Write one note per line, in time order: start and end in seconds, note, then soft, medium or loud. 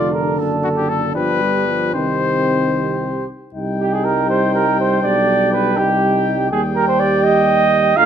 0.00 0.39 F1 medium
0.00 1.16 D3 medium
0.00 1.10 D4 soft
0.00 0.14 F4 soft
0.00 0.12 D5 medium
0.13 0.40 A#4 soft
0.38 1.13 F#1 soft
0.38 1.16 A4 soft
0.63 0.69 F#4 medium
0.76 0.90 G4 medium
0.89 1.14 A4 medium
1.14 1.96 G1 soft
1.14 1.42 F3 soft
1.14 1.96 D4 soft
1.14 1.93 G4 soft
1.14 1.93 B4 medium
1.41 1.67 G3 soft
1.67 1.96 F3 soft
1.94 3.28 C2 soft
1.94 3.29 D#3 soft
1.94 3.28 C4 soft
1.94 3.26 G4 soft
1.94 3.26 C5 medium
3.54 4.99 C2 soft
3.54 6.47 G3 soft
3.54 4.99 D#4 soft
3.54 6.47 G5 soft
3.80 3.94 G4 medium
3.93 4.06 G#4 medium
4.04 4.29 A#4 medium
4.29 4.54 C5 medium
4.54 4.78 A#4 medium
4.79 5.02 C5 medium
5.03 5.75 B1 medium
5.03 5.78 D4 soft
5.03 5.51 D5 medium
5.52 5.78 B4 medium
5.77 6.53 C2 soft
5.77 6.50 D#4 soft
5.77 6.50 G4 medium
6.51 7.96 D#2 medium
6.51 7.94 G3 soft
6.51 7.94 G4 medium
6.51 6.62 G#4 medium
6.51 7.94 G5 medium
6.76 6.87 A#4 medium
6.88 7.01 C5 medium
6.99 7.25 D5 medium
7.24 7.98 D#5 medium
7.97 8.05 D2 medium
7.97 8.05 D3 medium
7.97 8.05 F4 medium
7.97 8.05 F5 medium
7.97 8.05 A#5 medium